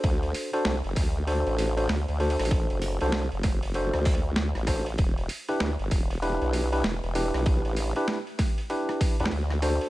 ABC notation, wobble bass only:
X:1
M:4/4
L:1/16
Q:"Swing 16ths" 1/4=97
K:Em
V:1 name="Wobble bass" clef=bass
D,,2 z2 C,, F,,, D,,3 A,,,3 D,, D,,2 A,,,- | A,,, F,,,2 C,,2 F,,,4 D,,3 D,, A,,,3 | E,,,2 z2 D,, G,,, E,,,3 B,,,3 E,,, E,,,2 B,,,- | B,,, A,,,2 z8 E,, D,,3 z |]